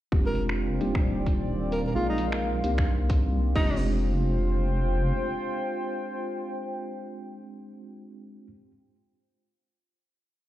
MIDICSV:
0, 0, Header, 1, 7, 480
1, 0, Start_track
1, 0, Tempo, 458015
1, 127, Time_signature, 4, 2, 24, 8
1, 10990, End_track
2, 0, Start_track
2, 0, Title_t, "Ambient pad"
2, 0, Program_c, 0, 92
2, 125, Note_on_c, 0, 65, 85
2, 467, Note_on_c, 0, 72, 72
2, 468, Note_on_c, 0, 79, 70
2, 846, Note_on_c, 0, 51, 78
2, 1099, Note_on_c, 0, 70, 77
2, 1324, Note_off_c, 0, 72, 0
2, 1325, Note_off_c, 0, 79, 0
2, 1326, Note_off_c, 0, 65, 0
2, 1404, Note_on_c, 0, 77, 80
2, 2346, Note_off_c, 0, 51, 0
2, 2390, Note_on_c, 0, 84, 71
2, 2765, Note_on_c, 0, 60, 67
2, 3246, Note_off_c, 0, 70, 0
2, 3246, Note_off_c, 0, 84, 0
2, 3248, Note_off_c, 0, 77, 0
2, 3724, Note_on_c, 0, 65, 80
2, 3726, Note_off_c, 0, 60, 0
2, 3815, Note_on_c, 0, 72, 81
2, 4140, Note_on_c, 0, 79, 77
2, 8602, Note_off_c, 0, 65, 0
2, 8603, Note_off_c, 0, 72, 0
2, 8606, Note_off_c, 0, 79, 0
2, 10990, End_track
3, 0, Start_track
3, 0, Title_t, "Alto saxophone"
3, 0, Program_c, 1, 65
3, 275, Note_on_c, 1, 70, 84
3, 458, Note_off_c, 1, 70, 0
3, 1804, Note_on_c, 1, 70, 78
3, 1901, Note_off_c, 1, 70, 0
3, 1957, Note_on_c, 1, 70, 67
3, 2014, Note_off_c, 1, 70, 0
3, 2047, Note_on_c, 1, 65, 81
3, 2167, Note_off_c, 1, 65, 0
3, 2197, Note_on_c, 1, 63, 83
3, 2379, Note_off_c, 1, 63, 0
3, 3728, Note_on_c, 1, 63, 86
3, 3967, Note_off_c, 1, 63, 0
3, 10990, End_track
4, 0, Start_track
4, 0, Title_t, "Analog synth pad"
4, 0, Program_c, 2, 89
4, 123, Note_on_c, 2, 60, 74
4, 124, Note_on_c, 2, 74, 76
4, 3725, Note_off_c, 2, 60, 0
4, 3726, Note_off_c, 2, 74, 0
4, 10990, End_track
5, 0, Start_track
5, 0, Title_t, "Tine electric piano"
5, 0, Program_c, 3, 4
5, 128, Note_on_c, 3, 56, 68
5, 128, Note_on_c, 3, 60, 60
5, 128, Note_on_c, 3, 62, 61
5, 128, Note_on_c, 3, 65, 60
5, 129, Note_on_c, 3, 67, 73
5, 826, Note_off_c, 3, 56, 0
5, 826, Note_off_c, 3, 60, 0
5, 826, Note_off_c, 3, 62, 0
5, 826, Note_off_c, 3, 65, 0
5, 826, Note_off_c, 3, 67, 0
5, 848, Note_on_c, 3, 55, 68
5, 848, Note_on_c, 3, 58, 63
5, 848, Note_on_c, 3, 62, 63
5, 848, Note_on_c, 3, 63, 63
5, 848, Note_on_c, 3, 67, 75
5, 2026, Note_off_c, 3, 55, 0
5, 2026, Note_off_c, 3, 58, 0
5, 2026, Note_off_c, 3, 62, 0
5, 2026, Note_off_c, 3, 63, 0
5, 2026, Note_off_c, 3, 67, 0
5, 2045, Note_on_c, 3, 63, 61
5, 2046, Note_on_c, 3, 56, 67
5, 2046, Note_on_c, 3, 58, 63
5, 2046, Note_on_c, 3, 68, 79
5, 2047, Note_on_c, 3, 65, 62
5, 2745, Note_off_c, 3, 56, 0
5, 2745, Note_off_c, 3, 58, 0
5, 2745, Note_off_c, 3, 63, 0
5, 2745, Note_off_c, 3, 65, 0
5, 2745, Note_off_c, 3, 68, 0
5, 2766, Note_on_c, 3, 67, 80
5, 2767, Note_on_c, 3, 58, 71
5, 2767, Note_on_c, 3, 60, 64
5, 2767, Note_on_c, 3, 62, 66
5, 2767, Note_on_c, 3, 63, 63
5, 3715, Note_off_c, 3, 62, 0
5, 3715, Note_off_c, 3, 67, 0
5, 3716, Note_off_c, 3, 60, 0
5, 3727, Note_off_c, 3, 58, 0
5, 3727, Note_off_c, 3, 63, 0
5, 3728, Note_on_c, 3, 56, 79
5, 3728, Note_on_c, 3, 60, 72
5, 3728, Note_on_c, 3, 62, 73
5, 3728, Note_on_c, 3, 65, 71
5, 3728, Note_on_c, 3, 67, 87
5, 8873, Note_off_c, 3, 60, 0
5, 8873, Note_off_c, 3, 62, 0
5, 8873, Note_off_c, 3, 67, 0
5, 8874, Note_off_c, 3, 56, 0
5, 8874, Note_off_c, 3, 65, 0
5, 10990, End_track
6, 0, Start_track
6, 0, Title_t, "Wobble bass"
6, 0, Program_c, 4, 39
6, 126, Note_on_c, 4, 29, 84
6, 828, Note_off_c, 4, 29, 0
6, 846, Note_on_c, 4, 27, 82
6, 2029, Note_off_c, 4, 27, 0
6, 2047, Note_on_c, 4, 34, 85
6, 2749, Note_off_c, 4, 34, 0
6, 2767, Note_on_c, 4, 36, 87
6, 3720, Note_off_c, 4, 36, 0
6, 3726, Note_on_c, 4, 29, 96
6, 5365, Note_off_c, 4, 29, 0
6, 10990, End_track
7, 0, Start_track
7, 0, Title_t, "Drums"
7, 126, Note_on_c, 9, 36, 102
7, 231, Note_off_c, 9, 36, 0
7, 366, Note_on_c, 9, 46, 92
7, 471, Note_off_c, 9, 46, 0
7, 517, Note_on_c, 9, 26, 61
7, 621, Note_off_c, 9, 26, 0
7, 847, Note_on_c, 9, 46, 97
7, 951, Note_off_c, 9, 46, 0
7, 995, Note_on_c, 9, 36, 92
7, 996, Note_on_c, 9, 26, 54
7, 1100, Note_off_c, 9, 36, 0
7, 1101, Note_off_c, 9, 26, 0
7, 1325, Note_on_c, 9, 36, 55
7, 1326, Note_on_c, 9, 46, 95
7, 1430, Note_off_c, 9, 36, 0
7, 1431, Note_off_c, 9, 46, 0
7, 1804, Note_on_c, 9, 46, 95
7, 1909, Note_off_c, 9, 46, 0
7, 2285, Note_on_c, 9, 46, 92
7, 2390, Note_off_c, 9, 46, 0
7, 2435, Note_on_c, 9, 26, 63
7, 2540, Note_off_c, 9, 26, 0
7, 2765, Note_on_c, 9, 46, 94
7, 2870, Note_off_c, 9, 46, 0
7, 2915, Note_on_c, 9, 26, 54
7, 2916, Note_on_c, 9, 36, 95
7, 3019, Note_off_c, 9, 26, 0
7, 3020, Note_off_c, 9, 36, 0
7, 3245, Note_on_c, 9, 46, 96
7, 3246, Note_on_c, 9, 36, 101
7, 3350, Note_off_c, 9, 46, 0
7, 3351, Note_off_c, 9, 36, 0
7, 3726, Note_on_c, 9, 36, 102
7, 3726, Note_on_c, 9, 49, 82
7, 3831, Note_off_c, 9, 36, 0
7, 3831, Note_off_c, 9, 49, 0
7, 10990, End_track
0, 0, End_of_file